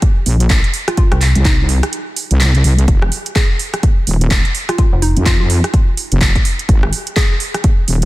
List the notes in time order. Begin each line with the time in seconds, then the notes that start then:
0.02 kick, closed hi-hat
0.26 A#1, open hi-hat
0.40 closed hi-hat
0.50 kick, clap, closed hi-hat
0.64 closed hi-hat
0.74 open hi-hat
0.88 F4, cross-stick, closed hi-hat
0.97 F4, kick, closed hi-hat
1.12 C2, cross-stick, closed hi-hat
1.21 clap, open hi-hat
1.35 C2, closed hi-hat
1.45 D#4, kick, clap, closed hi-hat
1.69 open hi-hat
1.83 cross-stick, closed hi-hat
1.93 closed hi-hat
2.17 open hi-hat
2.31 C2, closed hi-hat
2.40 clap, closed hi-hat
2.55 closed hi-hat
2.64 C2, open hi-hat
2.79 closed hi-hat
2.88 F1, kick, closed hi-hat
3.02 cross-stick
3.12 open hi-hat
3.26 closed hi-hat
3.35 G#4, kick, clap, closed hi-hat
3.59 open hi-hat
3.74 cross-stick, closed hi-hat
3.83 kick, closed hi-hat
4.07 D#1, open hi-hat
4.21 closed hi-hat
4.31 kick, clap, closed hi-hat
4.45 closed hi-hat
4.55 open hi-hat
4.69 F4, cross-stick, closed hi-hat
4.78 F4, kick, closed hi-hat
4.93 F1
5.02 D#4, open hi-hat
5.16 F2, closed hi-hat
5.26 F4, kick, clap, closed hi-hat
5.40 F4
5.50 open hi-hat
5.64 cross-stick, closed hi-hat
5.74 kick, closed hi-hat
5.97 open hi-hat
6.12 F1, closed hi-hat
6.21 kick, clap, closed hi-hat
6.35 kick, closed hi-hat
6.45 open hi-hat
6.59 closed hi-hat
6.69 G#1, kick, closed hi-hat
6.83 cross-stick
6.93 open hi-hat
7.07 closed hi-hat
7.16 G#4, kick, clap, closed hi-hat
7.40 open hi-hat
7.54 cross-stick, closed hi-hat
7.64 kick, closed hi-hat
7.88 D#1, open hi-hat
8.02 closed hi-hat